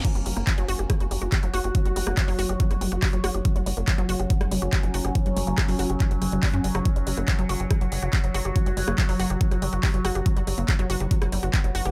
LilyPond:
<<
  \new Staff \with { instrumentName = "Synth drone" } { \time 4/4 \key fis \major \tempo 4 = 141 <fis fis'>1~ | <fis fis'>1 | cis'1~ | cis'1 |
fis'1~ | fis'1 | b1 | }
  \new Staff \with { instrumentName = "Synth arpeggio sound" } { \clef bass \time 4/4 \key fis \major fis16 g16 g16 ais16 fis16 fis16 fis'16 g'16 fis16 g16 g16 fis'16 g'16 fis16 fis'16 g'16 | fis16 g16 g16 ais16 fis16 fis16 fis'16 g'16 fis16 g16 g16 fis'16 g'16 fis16 fis'16 g'16 | fis16 g16 g16 ais16 fis16 fis16 fis'16 g'16 fis16 g16 g16 fis'16 g'16 fis16 fis'16 g'16 | fis16 g16 g16 ais16 fis16 fis16 fis'16 g'16 fis16 g16 fis16 g16 g16 cis'16 g16 fis16 |
fis16 g16 g16 ais16 fis16 fis16 fis'16 g'16 fis16 fis16 g16 fis'16 g'16 fis16 fis'16 g'16 | fis16 g16 g16 ais16 fis16 fis16 fis'16 g'16 fis16 fis16 g16 fis'16 g'16 fis16 fis'16 g'16 | fis16 g16 g16 ais16 fis16 fis16 fis'16 g'16 fis16 fis16 g16 fis'16 g'16 fis16 fis'16 g'16 | }
  \new Staff \with { instrumentName = "Analog synth bass" } { \clef bass \time 4/4 \key fis \major r16 fis,,16 fis,,16 fis,,16 r16 fis,,16 fis,,16 fis,,16 r16 fis,,16 fis,,16 fis,,16 r16 fis,,16 fis,,16 fis,,16 | r16 fis,,16 fis,,16 fis,,16 r16 fis,,16 fis,,16 fis,,16 r16 fis,,16 fis,,16 fis,,16 r16 fis,,16 fis,,16 fis,,16 | r16 fis,,16 fis,,16 fis,,16 r16 fis,,16 fis,,16 fis,,16 r16 fis,,16 fis,,16 fis,,16 r16 fis,,16 fis,,16 fis,,16 | r16 fis,,16 fis,,16 fis,,16 r16 fis,,16 fis,,16 fis,,16 r16 fis,,16 fis,,16 fis,,16 r16 fis,16 fis,,16 fis,,16 |
r16 fis,,16 fis,,16 fis,,16 r16 fis,,16 fis,,16 fis,,16 r16 fis,,16 fis,,16 fis,,16 r16 fis,,16 fis,,16 fis,,16 | r16 fis,,16 fis,,16 fis,,16 r16 fis,,16 fis,,16 fis,,16 r16 fis,,16 fis,,16 fis,,16 r16 fis,,16 fis,,16 fis,,16 | r16 fis,,16 fis,,16 fis,,16 r16 fis,,16 fis,,16 fis,,16 r16 fis,,16 fis,,16 fis,,16 r16 fis,,16 fis,,16 fis,,16 | }
  \new DrumStaff \with { instrumentName = "Drums" } \drummode { \time 4/4 <cymc hh bd>16 hh16 hho16 <hh ss>16 <hc hh bd>16 hh16 hho16 hh16 <hh bd ss>16 hh16 hho16 hh16 <hc hh bd>16 hh16 <hho ss>16 hh16 | <hh bd>16 hh16 hho16 <hh ss>16 <hc hh bd>16 hho16 hho16 hh16 <hh bd>16 <hh ss>16 hho16 hh16 <hc hho bd>16 hh16 <hho ss>16 hh16 | <hh bd>16 hh16 hho16 hh16 <hc hh bd ss>16 hh16 hho16 hh16 <hh bd>16 <hh ss>16 hho16 hh16 <hc hh bd>16 hh16 hho16 <hh ss>16 | <hh bd>16 hh16 hho16 hh16 <hc hh bd ss>16 hho16 hho16 hh16 <hc hh bd>16 hh16 <hho ss>16 hh16 <hc hho bd>16 hh16 hho16 <hh ss>16 |
<hh bd>16 hh16 hho16 <hh ss>16 <hc hh bd>16 hh16 hho16 hh16 <hh bd ss>16 hh16 hho16 hh16 <hc hh bd>16 hh16 <hho ss>16 hh16 | <hh bd>16 hh16 hho16 ss16 <hc hh bd>16 hho16 hho16 hh16 <hh bd>16 <hh ss>16 hho16 hh16 <hc hho bd>16 hh16 <hho ss>16 hh16 | <hh bd>16 hh16 hho16 hh16 <hc hh bd ss>16 hh16 hho16 hh16 <hh bd>16 <hh ss>16 hho16 hh16 <hc hh bd>16 hh16 hho16 <hh ss>16 | }
>>